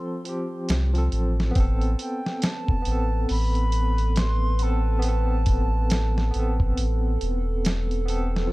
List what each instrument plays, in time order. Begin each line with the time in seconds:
Already playing: tine electric piano F3 C4 A4, flute C6
0.24 tine electric piano F3 C4, closed hi-hat
0.29 tine electric piano G4
0.69 sub bass C2, snare, closed hi-hat
0.94 tine electric piano F3 C4, closed hi-hat
0.98 tine electric piano A4
1.12 sub bass A1, closed hi-hat
1.40 snare
1.51 tine electric piano B3
1.55 sub bass A1, tine electric piano C4, ambient pad A4 B4, kick, closed hi-hat
1.60 tine electric piano A4
1.81 closed hi-hat
1.99 flute G5, closed hi-hat
2.26 snare
2.42 flute A5, snare, closed hi-hat
2.68 kick
2.82 tine electric piano B3, closed hi-hat
2.86 sub bass A1, tine electric piano C4
2.92 tine electric piano A4
3.29 sub bass A1, flute B5, open hi-hat
3.55 closed hi-hat
3.72 closed hi-hat
3.98 closed hi-hat
4.16 flute C6, snare, closed hi-hat
4.59 tine electric piano B3 C4, flute A5, closed hi-hat
4.64 tine electric piano A4
4.99 tine electric piano B3, closed hi-hat
5.04 tine electric piano C4
5.09 tine electric piano A4
5.46 kick, closed hi-hat
5.90 snare, closed hi-hat
6.18 snare
6.31 tine electric piano B3, closed hi-hat
6.35 sub bass A1, tine electric piano C4
6.39 tine electric piano A4
6.60 kick
6.77 sub bass A1, closed hi-hat
7.21 sub bass E1, closed hi-hat
7.65 snare, closed hi-hat
7.91 closed hi-hat
8.06 tine electric piano B3 C4, closed hi-hat
8.10 tine electric piano A4
8.36 snare
8.47 tine electric piano F3